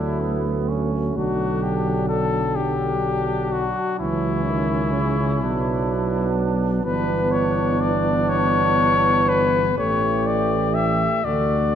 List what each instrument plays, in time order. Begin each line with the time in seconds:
Already playing: tuba D2, euphonium F#3, trombone A3, flugelhorn D4, cornet E4
0.20 flugelhorn B3
0.68 flugelhorn C#4
1.16 tuba B1, trombone D3, euphonium F#3, flugelhorn D4, cornet F#4
1.63 cornet G4
2.09 cornet A4
2.55 flugelhorn D4, cornet G4
3.52 cornet F#4
3.99 tuba C#2, trombone E3, flugelhorn C#4, cornet E4
4.47 trombone D#3
4.94 trombone C#3
5.41 tuba B1, trombone F#3, euphonium B3, flugelhorn D4
6.84 tuba G1, trombone E3, euphonium B3, flugelhorn D4, cornet B4
7.32 cornet C#5
7.81 cornet D5
8.29 cornet C#5
9.29 cornet B4
9.77 tuba A1, trombone E3, euphonium A3, flugelhorn G4, cornet C#5
10.27 cornet D5
10.75 cornet E5
11.24 tuba D2, trombone D3, euphonium A3, flugelhorn F#4, cornet D5